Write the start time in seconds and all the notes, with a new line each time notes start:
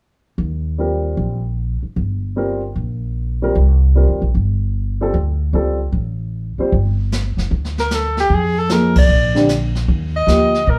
0.38 D#2
0.78 G3 C4 F4 A#4
1.17 A#1
1.83 muted upright bass stroke
1.96 G1
2.36 G3 C4 F4 A#4
2.76 A#1
3.42 G3 C4 F4 A#4
3.55 C2
3.95 G3 C4 F4 A#4
4.08 D#2
4.22 A#1
4.35 G1
5.01 G3 C4 F4 A4
5.14 D2
5.53 C#2 G3 C4 F4 A4
5.92 A1
6.58 G3 C4 F4 C5, muted upright bass stroke
6.72 G1, brush sweep, kick
7.12 snare, hi-hat pedal
7.37 F1, snare
7.51 D2, brush sweep, kick
7.65 snare
7.78 A#4, snare
7.91 A4, snare, hi-hat pedal
8.17 G4, snare
8.30 F2, brush sweep, kick
8.34 G#4
8.59 A4
8.69 F3 A#3 D#4 G#4 A#4, snare, hi-hat pedal
8.95 D5, kick, ride
9.09 A#1, brush sweep
9.35 D3 G3 C4 D4, snare
9.49 snare, hi-hat pedal
9.75 snare
9.88 D#2, brush sweep, kick
10.17 D#5
10.27 D2 F3 A#3 D#4 G4, snare, hi-hat pedal
10.54 snare
10.67 A#2 A#4, brush sweep, kick